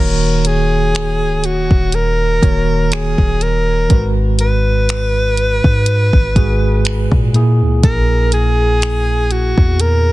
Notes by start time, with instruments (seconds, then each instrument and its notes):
Already playing: 808-style bass D#1, tine electric piano D#3 A#3 F#4 C#5, alto saxophone A#4
0.45 alto saxophone G#4, closed hi-hat
0.95 finger snap, closed hi-hat
1.22 808-style bass C#1
1.44 808-style bass D#1, alto saxophone F#4, closed hi-hat
1.71 808-style bass D#1, kick
1.92 alto saxophone A#4, closed hi-hat
2.41 808-style bass D#1, tine electric piano D#3 A#3 F#4 C#5, kick, closed hi-hat
2.92 alto saxophone G#4, finger snap, closed hi-hat
3.18 808-style bass D#1, kick
3.41 alto saxophone A#4, closed hi-hat
3.89 808-style bass G#1, tine electric piano G#2 G#3 F#4 B4, kick, closed hi-hat
4.39 alto saxophone B4, closed hi-hat
4.89 finger snap, closed hi-hat
5.37 closed hi-hat
5.64 808-style bass G#2, kick
5.86 closed hi-hat
6.13 808-style bass G#1, kick
6.35 tine electric piano G#2 G#3 F#4 G#4, kick, closed hi-hat
6.85 finger snap, closed hi-hat
7.12 808-style bass A#2, kick
7.33 tine electric piano A#2 A#3 E4 G#4, closed hi-hat
7.61 808-style bass C#2
7.83 808-style bass A#1, alto saxophone A#4, kick, closed hi-hat
8.32 alto saxophone G#4, closed hi-hat
8.82 finger snap, closed hi-hat
9.31 alto saxophone F#4, closed hi-hat
9.58 808-style bass E2, kick
9.80 alto saxophone A#4, closed hi-hat